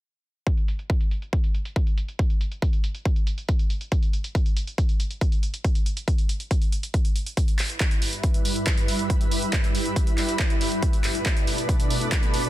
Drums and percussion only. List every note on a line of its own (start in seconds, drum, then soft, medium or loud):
0.47 kick loud
0.47 closed hi-hat medium
0.57 closed hi-hat soft
0.68 closed hi-hat medium
0.79 closed hi-hat soft
0.90 kick loud
0.90 closed hi-hat medium
1.01 closed hi-hat soft
1.11 closed hi-hat medium
1.22 closed hi-hat soft
1.33 kick loud
1.33 closed hi-hat medium
1.44 closed hi-hat soft
1.54 closed hi-hat medium
1.65 closed hi-hat medium
1.76 kick loud
1.76 closed hi-hat medium
1.87 closed hi-hat soft
1.98 closed hi-hat medium
2.08 closed hi-hat soft
2.19 kick loud
2.19 closed hi-hat medium
2.30 closed hi-hat soft
2.41 closed hi-hat medium
2.52 closed hi-hat soft
2.62 kick loud
2.62 closed hi-hat medium
2.73 closed hi-hat medium
2.84 closed hi-hat medium
2.95 closed hi-hat soft
3.05 kick loud
3.05 closed hi-hat medium
3.16 closed hi-hat soft
3.27 closed hi-hat medium
3.38 closed hi-hat soft
3.49 kick loud
3.49 closed hi-hat medium
3.59 closed hi-hat soft
3.70 closed hi-hat medium
3.81 closed hi-hat soft
3.92 kick loud
3.92 closed hi-hat medium
4.03 closed hi-hat soft
4.13 closed hi-hat medium
4.24 closed hi-hat soft
4.35 kick loud
4.35 closed hi-hat medium
4.46 closed hi-hat soft
4.57 closed hi-hat medium
4.67 closed hi-hat soft
4.78 kick loud
4.78 closed hi-hat medium
4.89 closed hi-hat soft
5.00 closed hi-hat medium
5.11 closed hi-hat soft
5.21 kick loud
5.21 closed hi-hat medium
5.32 closed hi-hat soft
5.43 closed hi-hat medium
5.54 closed hi-hat soft
5.64 kick loud
5.64 closed hi-hat medium
5.75 closed hi-hat soft
5.86 closed hi-hat medium
5.97 closed hi-hat soft
6.08 kick loud
6.08 closed hi-hat medium
6.18 closed hi-hat soft
6.29 closed hi-hat medium
6.40 closed hi-hat soft
6.51 kick loud
6.51 closed hi-hat medium
6.62 closed hi-hat soft
6.72 closed hi-hat medium
6.83 closed hi-hat soft
6.94 kick loud
6.94 closed hi-hat medium
7.05 closed hi-hat soft
7.16 closed hi-hat medium
7.26 closed hi-hat soft
7.37 kick loud
7.37 closed hi-hat medium
7.48 closed hi-hat soft
7.59 clap medium
7.59 open hi-hat medium
7.70 closed hi-hat soft
7.80 kick loud
7.80 clap loud
7.80 closed hi-hat medium
7.91 closed hi-hat soft
8.02 open hi-hat loud
8.13 closed hi-hat soft
8.23 kick loud
8.23 closed hi-hat medium
8.34 closed hi-hat soft
8.45 open hi-hat loud
8.56 closed hi-hat soft
8.67 kick loud
8.67 clap loud
8.67 closed hi-hat medium
8.78 closed hi-hat soft
8.88 open hi-hat loud
8.99 closed hi-hat soft
9.10 kick loud
9.10 closed hi-hat medium
9.21 closed hi-hat soft
9.31 open hi-hat medium
9.42 closed hi-hat soft
9.53 kick loud
9.53 clap loud
9.53 closed hi-hat medium
9.64 closed hi-hat soft
9.75 open hi-hat medium
9.86 closed hi-hat soft
9.96 kick loud
9.96 closed hi-hat medium
10.07 closed hi-hat soft
10.18 clap medium
10.18 open hi-hat medium
10.29 closed hi-hat soft
10.39 kick loud
10.39 clap loud
10.39 closed hi-hat medium
10.50 closed hi-hat medium
10.61 open hi-hat loud
10.72 closed hi-hat soft
10.82 kick loud
10.82 closed hi-hat medium
10.93 closed hi-hat medium
11.04 clap medium
11.04 open hi-hat medium
11.15 closed hi-hat medium
11.26 kick loud
11.26 clap loud
11.26 closed hi-hat medium
11.37 closed hi-hat medium
11.47 open hi-hat medium
11.58 closed hi-hat soft
11.69 kick loud
11.69 closed hi-hat medium
11.80 closed hi-hat soft
11.90 open hi-hat medium
12.01 closed hi-hat medium
12.12 kick loud
12.12 clap loud
12.12 closed hi-hat medium
12.23 closed hi-hat soft
12.34 open hi-hat loud
12.45 closed hi-hat soft